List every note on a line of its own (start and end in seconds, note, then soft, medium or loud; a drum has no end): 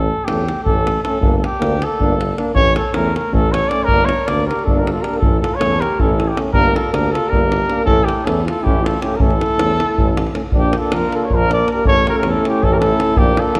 0.00 0.11 A1 medium
0.00 0.26 A4 loud
0.25 0.50 E2 medium
0.25 0.42 A3 medium
0.25 0.43 C#4 soft
0.25 0.63 G4 medium
0.25 davul high medium
0.48 davul high medium
0.63 0.82 A3 medium
0.63 0.82 C#4 medium
0.63 1.00 A4 medium
0.63 davul low medium
0.68 0.98 A1 medium
0.87 davul high medium
1.03 1.19 A3 medium
1.03 1.21 C#4 medium
1.03 1.36 A4 medium
1.03 davul high medium
1.21 1.43 G1 medium
1.21 1.37 A#3 medium
1.21 1.38 D4 medium
1.21 davul low medium
1.36 1.45 A4 medium
1.44 1.85 G4 medium
1.44 davul high medium
1.59 1.83 D2 medium
1.59 1.75 A#3 medium
1.59 1.77 D4 medium
1.59 davul high medium
1.82 2.38 A4 medium
1.82 davul high medium
2.00 2.30 G1 medium
2.00 2.16 A#3 medium
2.00 2.15 D4 medium
2.00 davul low medium
2.21 davul high medium
2.36 2.52 A#3 medium
2.36 2.53 D4 medium
2.36 davul high medium
2.54 2.76 A1 medium
2.54 2.71 A3 medium
2.54 2.70 C#4 medium
2.54 2.75 C#5 loud
2.54 davul low medium
2.76 2.97 A4 medium
2.76 davul high medium
2.93 3.16 E2 medium
2.93 3.11 A3 medium
2.93 3.09 C#4 medium
2.93 3.16 A#4 loud
2.93 davul high medium
3.16 3.35 A#4 medium
3.16 davul high medium
3.32 3.63 A1 loud
3.32 3.49 A3 medium
3.32 3.47 C#4 medium
3.32 3.54 A4 loud
3.32 davul low medium
3.52 3.70 C#5 medium
3.52 davul high medium
3.68 3.86 C#4 medium
3.68 3.85 D5 medium
3.68 davul high medium
3.72 3.88 A3 medium
3.84 4.06 A#4 loud
3.88 4.10 G1 medium
3.88 4.05 A#3 medium
3.88 4.05 D4 medium
3.88 davul low medium
4.05 4.28 C#5 medium
4.05 davul high medium
4.27 4.50 D2 medium
4.27 4.44 A#3 medium
4.27 4.45 D4 soft
4.27 4.46 D5 medium
4.27 davul high medium
4.40 davul high soft
4.47 4.66 G4 medium
4.47 4.66 A#4 medium
4.51 davul high soft
4.59 davul high soft
4.64 4.97 G1 medium
4.64 4.84 D4 medium
4.64 4.80 A4 medium
4.64 davul low medium
4.68 4.83 A#3 medium
4.68 4.83 D4 medium
4.78 4.94 G4 medium
4.78 4.92 A#4 medium
4.87 5.02 A4 medium
4.87 davul high medium
4.93 5.05 F4 medium
5.01 5.20 D4 soft
5.01 5.24 G4 medium
5.01 5.19 A#4 medium
5.01 davul high medium
5.05 5.20 A#3 soft
5.14 5.39 A4 medium
5.14 davul high soft
5.22 5.44 A1 medium
5.22 5.38 A3 medium
5.22 5.39 C#4 soft
5.22 5.42 E4 medium
5.22 davul low loud
5.40 5.61 F4 medium
5.40 5.57 A4 medium
5.40 davul high medium
5.56 5.81 A4 medium
5.56 5.82 C#5 medium
5.60 5.82 E2 medium
5.60 5.76 A3 medium
5.60 5.77 C#4 medium
5.60 davul high medium
5.80 6.02 G4 medium
5.80 6.01 A#4 medium
5.80 davul high medium
5.99 6.30 A1 medium
5.99 6.16 A3 medium
5.99 6.14 C#4 medium
5.99 6.28 E4 medium
5.99 6.29 A4 medium
5.99 davul low medium
6.20 davul high medium
6.28 6.37 E4 medium
6.28 6.37 G4 medium
6.36 6.53 A3 medium
6.36 6.52 C#4 medium
6.36 davul high medium
6.54 6.75 G1 medium
6.54 6.71 A#3 medium
6.54 6.70 D4 medium
6.54 6.76 G4 medium
6.54 6.77 A#4 loud
6.54 davul low medium
6.75 6.93 F4 medium
6.75 6.94 A4 medium
6.75 davul high medium
6.92 7.14 D2 medium
6.92 7.09 A#3 medium
6.92 7.08 D4 medium
6.92 7.16 G4 medium
6.92 7.13 A#4 medium
6.92 davul high medium
7.12 7.30 F4 medium
7.12 7.30 A4 medium
7.12 davul high medium
7.28 7.62 G1 medium
7.28 7.47 A#3 medium
7.28 7.46 D4 medium
7.28 7.85 G4 medium
7.28 7.84 A#4 medium
7.33 davul low medium
7.52 davul high medium
7.69 7.85 A#3 medium
7.69 7.84 D4 medium
7.69 davul high medium
7.84 8.08 A1 medium
7.84 8.03 A3 medium
7.84 8.00 C#4 medium
7.84 8.06 E4 medium
7.84 8.06 A4 loud
7.84 davul low medium
8.04 8.24 E4 medium
8.04 8.27 G4 medium
8.09 davul high medium
8.24 8.48 E2 medium
8.24 8.42 A3 medium
8.24 8.40 C#4 medium
8.24 8.45 E4 medium
8.24 8.47 A4 medium
8.24 davul high medium
8.45 8.63 F4 medium
8.45 8.65 A4 medium
8.45 davul high medium
8.62 8.95 A1 medium
8.62 8.78 A3 medium
8.62 8.79 C#4 medium
8.62 8.83 E4 medium
8.62 8.86 G4 medium
8.66 davul low medium
8.82 9.01 F4 medium
8.82 9.02 A4 medium
8.86 davul high medium
9.00 9.18 A3 medium
9.00 9.16 C#4 medium
9.00 9.16 E4 medium
9.00 9.17 G4 medium
9.00 davul high medium
9.15 9.34 C#4 medium
9.15 9.21 G4 soft
9.15 9.22 A#4 medium
9.19 9.41 A1 medium
9.19 9.35 A3 medium
9.19 10.34 E4 medium
9.19 10.35 A4 loud
9.19 davul low loud
9.30 davul high soft
9.41 davul high medium
9.57 9.79 E2 medium
9.57 9.74 A3 medium
9.57 9.73 C#4 medium
9.57 davul high medium
9.80 davul high medium
9.97 10.27 A1 medium
9.97 10.12 A3 medium
9.97 10.12 C#4 medium
9.97 davul low medium
10.17 davul high medium
10.27 davul high soft
10.34 10.41 A3 soft
10.34 10.41 C#4 soft
10.34 davul high medium
10.50 10.74 A#1 medium
10.50 11.86 A#3 medium
10.50 11.85 D4 medium
10.50 10.73 D4 medium
10.50 davul low medium
10.57 10.74 G4 medium
10.73 10.92 F4 medium
10.73 davul high medium
10.78 10.95 A4 medium
10.92 11.04 F2 medium
10.92 11.13 F4 medium
10.92 11.17 A#4 medium
10.92 davul high medium
11.12 11.28 F4 medium
11.12 11.26 A4 medium
11.12 davul high soft
11.24 11.36 A4 medium
11.24 11.36 C#5 medium
11.30 11.61 A#1 medium
11.30 davul low medium
11.34 11.52 F4 medium
11.34 11.52 A#4 loud
11.51 11.68 A#4 medium
11.51 11.68 D5 medium
11.51 davul high medium
11.68 11.85 A#4 medium
11.68 davul high medium
11.73 11.85 G4 medium
11.84 12.06 A1 medium
11.84 13.17 A3 medium
11.84 13.15 C#4 medium
11.84 12.05 A4 medium
11.84 12.05 C#5 loud
11.84 davul low medium
12.06 12.19 F4 medium
12.06 12.11 G4 medium
12.06 12.14 A#4 medium
12.06 davul high medium
12.13 12.19 A4 medium
12.17 12.29 G4 medium
12.17 12.27 A#4 medium
12.23 12.35 E2 medium
12.23 12.46 A4 medium
12.23 davul high medium
12.28 12.47 E4 medium
12.45 12.65 E4 medium
12.45 12.65 G4 medium
12.45 davul high medium
12.62 12.92 A1 loud
12.62 12.72 E4 medium
12.62 12.74 A4 medium
12.62 davul low medium
12.70 12.82 G4 medium
12.70 12.80 A#4 medium
12.79 13.20 E4 medium
12.79 13.19 A4 medium
12.79 davul high medium
13.00 davul high medium
13.15 13.38 A#1 medium
13.15 13.60 A#3 medium
13.15 13.60 D4 medium
13.15 13.39 D4 medium
13.15 13.41 G4 loud
13.15 davul low loud
13.37 13.55 F4 medium
13.37 13.60 A4 medium
13.37 davul high medium
13.55 13.60 F2 medium
13.55 13.60 F4 medium
13.55 davul high medium